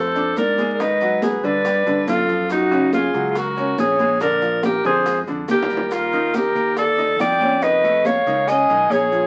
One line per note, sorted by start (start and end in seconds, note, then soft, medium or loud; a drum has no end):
0.00 0.33 F2 medium
0.00 0.37 A4 medium
0.00 0.37 C5 medium
0.15 0.50 D4 medium
0.15 0.51 D5 medium
0.15 high conga soft
0.15 maracas soft
0.37 1.37 G#2 medium
0.37 0.73 A#4 medium
0.37 0.72 D5 medium
0.37 high bongo soft
0.37 low bongo medium
0.37 high conga medium
0.37 maracas medium
0.58 0.76 G#3 medium
0.58 0.76 G#4 medium
0.58 high bongo soft
0.58 high conga medium
0.58 maracas soft
0.72 0.82 A#4 medium
0.72 0.82 D5 soft
0.80 0.97 D#3 medium
0.80 0.97 D#4 medium
0.80 1.23 B4 medium
0.80 1.23 D#5 medium
0.80 high bongo medium
0.80 high conga soft
0.80 maracas medium
1.01 1.36 F#3 medium
1.01 1.36 F#4 medium
1.01 high conga soft
1.01 maracas soft
1.22 1.47 G#4 medium
1.22 1.46 B4 medium
1.22 high bongo medium
1.22 high conga medium
1.22 maracas medium
1.43 1.83 G2 medium
1.43 1.61 D3 medium
1.43 1.61 D4 medium
1.43 2.08 B4 medium
1.43 2.08 D5 medium
1.43 high bongo soft
1.43 high conga soft
1.43 maracas soft
1.65 1.82 G3 medium
1.65 1.83 G4 medium
1.65 high bongo medium
1.65 high conga soft
1.65 maracas medium
1.86 2.06 G2 medium
1.86 2.21 D3 medium
1.86 2.21 D4 medium
1.86 high conga soft
1.86 maracas soft
2.07 3.08 F#2 medium
2.07 2.48 F4 medium
2.07 2.48 A4 medium
2.07 high bongo soft
2.07 low bongo medium
2.07 high conga medium
2.07 maracas medium
2.28 2.63 F3 medium
2.28 2.64 F4 medium
2.28 high bongo soft
2.28 maracas soft
2.50 2.91 D#4 medium
2.50 2.91 F#4 medium
2.50 high bongo medium
2.50 high conga soft
2.50 maracas medium
2.71 3.06 C#3 medium
2.71 3.06 C#4 medium
2.71 high conga soft
2.71 maracas soft
2.93 3.30 F4 medium
2.93 3.29 G#4 medium
2.93 high bongo medium
2.93 high conga medium
2.93 maracas medium
3.14 3.74 C#2 medium
3.14 3.49 F#3 medium
3.14 3.49 F#4 medium
3.14 high bongo soft
3.14 high conga soft
3.14 maracas soft
3.29 3.39 F4 medium
3.29 3.39 G#4 medium
3.35 3.79 F#4 medium
3.35 3.79 A#4 medium
3.35 high bongo medium
3.35 high conga soft
3.35 maracas medium
3.57 3.92 C#4 medium
3.57 3.92 C#5 medium
3.57 high conga soft
3.57 maracas soft
3.78 4.79 A#1 medium
3.78 4.19 G#4 medium
3.78 4.19 C#5 medium
3.78 high bongo soft
3.78 low bongo medium
3.78 high conga medium
3.78 maracas medium
3.99 4.17 G#3 medium
3.99 4.17 G#4 medium
3.99 high bongo soft
3.99 high conga medium
3.99 maracas soft
4.21 4.38 D3 medium
4.21 4.38 D4 medium
4.21 4.61 A#4 medium
4.21 4.61 D5 medium
4.21 high bongo medium
4.21 maracas medium
4.42 4.77 F3 medium
4.42 4.77 F4 medium
4.42 high conga soft
4.42 maracas soft
4.63 4.84 G4 medium
4.63 4.83 A#4 medium
4.63 high bongo medium
4.63 high conga medium
4.63 maracas medium
4.84 5.24 F2 medium
4.84 5.02 D3 medium
4.84 5.02 D4 medium
4.84 5.20 G#4 medium
4.84 5.20 C5 medium
4.84 high bongo soft
4.84 high conga soft
4.84 maracas soft
5.06 5.23 G#3 medium
5.06 5.24 G#4 medium
5.06 high bongo medium
5.06 high conga soft
5.06 maracas medium
5.27 5.47 F2 medium
5.27 5.62 D3 medium
5.27 5.63 D4 medium
5.27 high conga soft
5.27 maracas soft
5.48 6.49 D#2 medium
5.48 5.94 G4 medium
5.48 5.93 A#4 medium
5.48 high bongo medium
5.48 high conga medium
5.48 maracas medium
5.62 low bongo loud
5.70 6.05 G3 medium
5.70 6.05 G4 medium
5.70 maracas soft
5.77 low bongo loud
5.91 6.37 F4 medium
5.91 6.35 A#4 medium
5.91 high bongo medium
5.91 high conga soft
5.91 maracas medium
6.13 6.48 D#3 medium
6.13 6.48 D#4 medium
6.13 high conga soft
6.13 maracas soft
6.34 6.78 G4 medium
6.34 6.77 A#4 medium
6.34 high bongo medium
6.34 high conga medium
6.34 maracas medium
6.55 7.15 D#2 medium
6.55 6.90 A#3 medium
6.55 6.91 A#4 medium
6.55 high bongo soft
6.55 high conga soft
6.55 maracas soft
6.77 7.17 A4 medium
6.77 7.17 D5 medium
6.77 high bongo medium
6.77 high conga soft
6.77 maracas medium
6.98 7.33 D#4 medium
6.98 7.33 D#5 medium
6.98 high conga soft
6.98 maracas soft
7.19 8.20 F2 medium
7.19 7.65 D5 loud
7.19 7.64 G5 medium
7.19 high bongo soft
7.19 low bongo medium
7.19 high conga medium
7.19 maracas medium
7.40 7.58 C#4 medium
7.40 7.58 C#5 medium
7.40 high bongo soft
7.40 high conga medium
7.40 maracas soft
7.62 7.80 D#3 medium
7.62 7.80 D#4 medium
7.62 8.08 B4 loud
7.62 8.07 D#5 medium
7.62 high bongo medium
7.62 high conga soft
7.62 maracas medium
7.84 8.19 A3 medium
7.84 8.19 A4 medium
7.84 high conga soft
7.84 maracas soft
8.05 8.50 C#5 medium
8.05 8.49 F5 medium
8.05 high bongo medium
8.05 high conga medium
8.05 maracas medium
8.26 8.66 C#2 medium
8.26 8.44 D#3 medium
8.26 8.44 D#4 medium
8.26 high bongo soft
8.26 high conga soft
8.26 maracas soft
8.47 8.65 C#4 medium
8.47 8.65 C#5 medium
8.47 8.93 D#5 loud
8.47 8.92 G#5 medium
8.47 high bongo medium
8.47 high conga soft
8.47 maracas medium
8.69 8.89 B1 medium
8.69 9.04 D#3 medium
8.69 9.04 D#4 medium
8.69 high conga soft
8.69 maracas soft
8.90 9.27 A#1 medium
8.90 9.27 G#4 loud
8.90 9.27 C#5 medium
8.90 high bongo soft
8.90 low bongo medium
8.90 high conga medium
8.90 maracas medium
9.12 9.27 F3 medium
9.12 9.27 F4 medium
9.12 high bongo soft
9.12 maracas soft